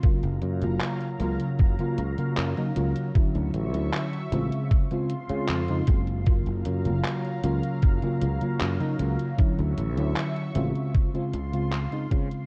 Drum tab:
HH |xxxxxxxxxxxxxxxx|xxxxxxxxxxxxxxxx|xxxxxxxxxxxxxxxx|xxxxxxxxxxxxxxxx|
CP |----x-------x---|----x-------x---|----x-------x---|----x-------x---|
BD |o-------o-------|o-------o-----o-|o-------o-------|o-------o-----o-|